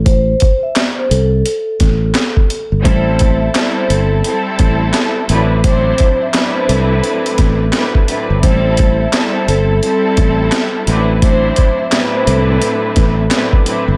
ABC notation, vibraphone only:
X:1
M:4/4
L:1/16
Q:"Swing 16ths" 1/4=86
K:Dmix
V:1 name="Vibraphone"
c3 e d c A8- A2 | c3 e d c A8- A2 | c3 e d c A8- A2 | c3 e d c A8- A2 |
c3 e d c A8- A2 |]